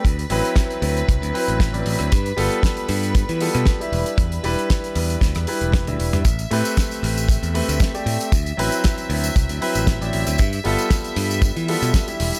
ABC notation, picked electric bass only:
X:1
M:4/4
L:1/16
Q:"Swing 16ths" 1/4=116
K:Gmix
V:1 name="Picked electric bass" clef=bass
D,, z A,,, z3 D,, z C,, D,, z A,,,2 A,,, A,,, D,, | G,, z G,,, z3 G,,3 E, z B,, z2 E,,, z | E,, z E,,, z3 E,, z D,, E,, z E,,,2 D,, E,,, G,, | A,,, z A,, z3 A,,,3 E,, z D,, z2 A,, z |
D,, z A,,, z3 D,, z C,, D,, z A,,,2 A,,, A,,, D,, | G,, z G,,, z3 G,,3 E, z B,, z2 E,,, z |]